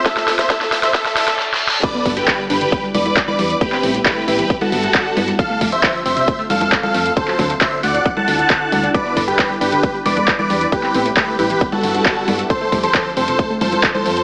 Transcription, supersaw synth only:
X:1
M:4/4
L:1/16
Q:1/4=135
K:G
V:1 name="Supersaw synth"
[Ae]2 z [ce] [Ae]2 z [ce] [Ae]2 [Ae]2 z4 | [Bd]2 z [GB]2 z [GB]3 z [Bd]2 z [Bd]2 z | [GB]3 z [GB]2 [GB]2 z [FA]6 z | [A=f]2 z [ce]2 z [ce]3 z [Af]2 z [Af]2 z |
[Ac]3 z [ce]2 [df]2 z [fa]6 z | [Bd]2 z [GB]2 z [GB]3 z [Bd]2 z [Bd]2 z | [GB]3 z [GB]2 [GB]2 z [FA]6 z | [Ac]2 z [Ac]2 z [Ac]3 z [Ac]2 z [Ac]2 z |]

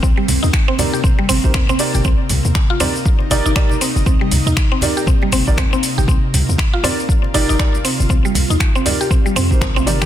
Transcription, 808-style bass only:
X:1
M:4/4
L:1/16
Q:"Swing 16ths" 1/4=119
K:Cm
V:1 name="808-style bass" clef=bass
C,, z C,, E,, z6 G,,, G,,, z3 G,,, | C,, z C,, E,, z6 G,,, G,,, z3 G,,, | C,, z C,, E,, z6 G,,, G,,, z3 G,,, | C,, z C,, E,, z6 G,,, G,,, z3 G,,, |
C,, z C,, E,, z6 F,, B,,,3 G,,, z |]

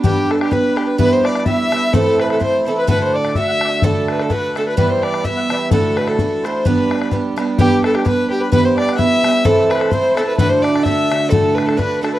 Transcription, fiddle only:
X:1
M:2/4
L:1/16
Q:"Swing" 1/4=128
K:G
V:1 name="Fiddle"
G2 A G B2 G B | B c d2 e4 | A2 B A c2 A B | B c d2 e4 |
A2 B A B2 A B | B c d2 e4 | A2 B A3 c2 | B4 z4 |
G2 A G B2 G B | B c d2 e4 | A2 B A c2 A B | B c d2 e4 |
A2 B A B2 A B |]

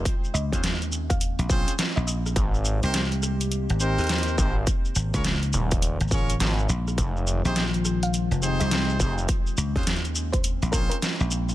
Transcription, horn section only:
X:1
M:4/4
L:1/16
Q:"Swing 16ths" 1/4=104
K:Bbdor
V:1 name="Horn section"
z3 [CDFAc] z6 [CDFAc] z4 z | z3 [CEGBc] z6 [CEGBc]4 [CEGBc] z | z3 [DFABd] z6 [DFABd] z4 z | z3 [CEGAc] z6 [CEGAc]4 [CEGAc] z |
z3 [CDFAc] z6 [CDFAc] z4 z |]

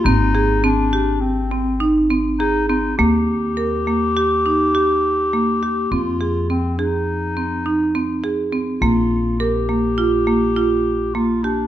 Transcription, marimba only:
X:1
M:5/4
L:1/8
Q:1/4=103
K:Eb
V:1 name="Marimba"
C A C G2 C E C A C | B,2 B B, G E G2 B, G | C A C A2 C E C A C | B,2 B B, F B, F2 B, G |]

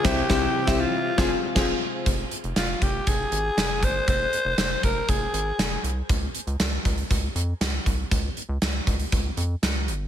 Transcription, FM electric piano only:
X:1
M:4/4
L:1/16
Q:1/4=119
K:Fm
V:1 name="FM electric piano"
[C,C=EGc]2 [C,CEGc]2 z [C,CEGc]2 z2 [CFAc]2 z [CFAc]2 z2 | z16 | z16 | z16 |
z16 |]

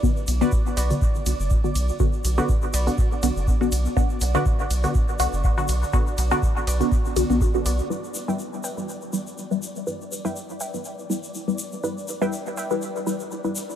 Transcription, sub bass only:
X:1
M:4/4
L:1/16
Q:"Swing 16ths" 1/4=122
K:Em
V:1 name="Sub bass" clef=bass
z2 B,,, z3 B,,, z3 B,,, F,,, z2 B,,, z | z2 B,,, z3 B,,, z3 B,,, F,,, z2 B,,, z | z2 B,,, z3 B,,, z3 B,,, F,,, z2 B,,, z | z2 B,,, z3 B,,, z3 B,,, B,,, z2 B,,, z |
z16 | z16 | z16 |]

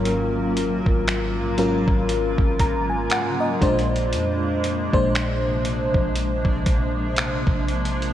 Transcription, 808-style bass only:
X:1
M:4/4
L:1/16
Q:"Swing 16ths" 1/4=59
K:Bbm
V:1 name="808-style bass" clef=bass
A,,,3 A,,,2 B,,, A,,, A,,,2 A,,,3 z2 B,,,2 | F,,3 B,,,4 B,,,2 B,,,4 B,,,3 |]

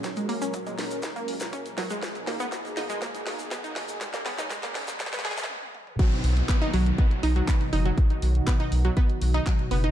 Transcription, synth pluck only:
X:1
M:4/4
L:1/16
Q:1/4=121
K:B
V:1 name="Synth pluck"
F, G, A, C F, G, z3 A, z2 C z F, G, | G, z A, B, z2 D G, A, z3 B, D z2 | G, A, B, D G, A, z3 B, G z4 z | [F,F] z3 [B,B] [Dd] [F,F] z [B,B] z [Dd] [F,F] [B,B] z [Dd] [F,F] |
z4 [B,B] [Dd] z [F,F] [B,B] z2 [Dd] [F,F] z [B,B] [Dd] |]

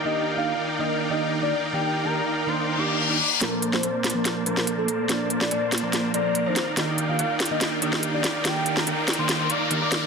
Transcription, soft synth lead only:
X:1
M:4/4
L:1/16
Q:1/4=143
K:Bb
V:1 name="Soft synth lead"
e2 z f2 z2 e2 z e2 z d2 z | g3 b4 c'3 d'2 z d'2 z | B2 z c4 B2 z B2 z A3 | d2 z d2 z2 d2 z d3 c2 z |
e2 z f2 z2 e2 z e2 z d3 | g3 b2 z2 c'3 d'2 z d'3 |]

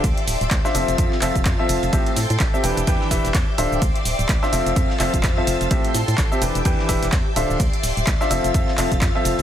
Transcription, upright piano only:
X:1
M:4/4
L:1/16
Q:"Swing 16ths" 1/4=127
K:Flyd
V:1 name="Upright piano"
z4 z [DFce] [F,CFAe]2 [F,CFAe] z [F,CFAe] z2 [F,CFAe]3 | [A,,CGAe]2 z3 [CGAe] [E,DGBg] z [E,DGBg]2 [E,DGBe] z3 [D,DFce]2 | z4 z [DFce] [F,CFAe]2 [F,CFAe] z [F,CFAe] z2 [F,CFAe]3 | [A,,CGAe]2 z3 [CGAe] [E,DGBg] z [E,DGBg]2 [E,DGBe] z3 [D,DFce]2 |
z4 z [DFce] [F,CFAe]2 [F,CFAe] z [F,CFAe] z2 [F,CFAe]3 |]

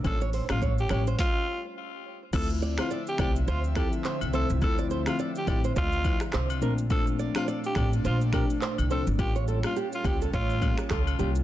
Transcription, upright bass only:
X:1
M:4/4
L:1/16
Q:"Swing 16ths" 1/4=105
K:Dm
V:1 name="Upright bass" clef=bass
A,,,3 A,,,3 A,,,2 z8 | D,,4 z2 C,,2 D,,3 z2 C,,2 C,, | D,,4 z2 A,,,2 D,,3 z C,,2 B,,,2- | B,,,4 z2 A,,,2 B,,,3 z2 C,,2 G,,, |
A,,,4 z2 ^C,,2 A,,,3 z C,,2 =C,,2 |]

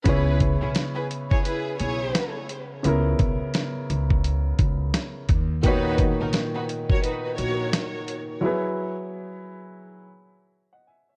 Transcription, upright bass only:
X:1
M:4/4
L:1/16
Q:"Swing 16ths" 1/4=86
K:C#dor
V:1 name="Upright bass" clef=bass
C,,3 B,,, z6 B,,,2 z4 | C,,2 B,,, z3 C,,4 C,,2 z2 D,,2- | D,,3 B,,, z6 A,,,2 z4 | z16 |]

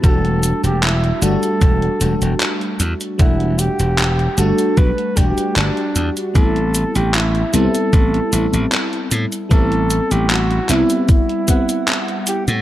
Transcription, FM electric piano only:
X:1
M:4/4
L:1/8
Q:1/4=76
K:Em
V:1 name="FM electric piano"
[G,A,DF]3 [G,A,DF]2 [G,A,DF]3 | [G,A,Df]3 [G,A,DF]2 [G,A,DG]3 | [G,B,CE]3 [G,B,CE]2 [G,B,CE]3 | [G,B,CE]3 [G,B,CE]2 [G,B,Cf]3 |]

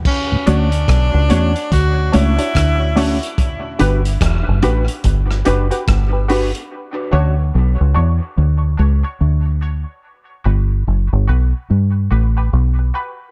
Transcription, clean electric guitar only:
X:1
M:4/4
L:1/8
Q:"Swing 16ths" 1/4=72
K:D
V:1 name="Clean electric guitar"
z [A,CF] z [A,CF] z [A,CF] z [A,CF] | z [DFB] z [DFB] z [DFB] z [DFB] | z [A,CF] z6 | z8 |]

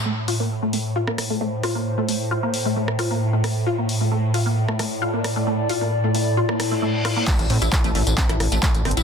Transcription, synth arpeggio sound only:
X:1
M:4/4
L:1/16
Q:1/4=133
K:Am
V:1 name="Synth arpeggio sound"
A, z F _B, z A, A, z F B, z A, A, z F B, | z A, A, z F _B, z A, A, z F B, z A, A, z | F _B, z A, A, z F B, z A, A, z F B, z A, | A, z F _B, z A, A, z F B, z A, A, z F B, |
A, z C E z A, A, z C E z A, A, z C E |]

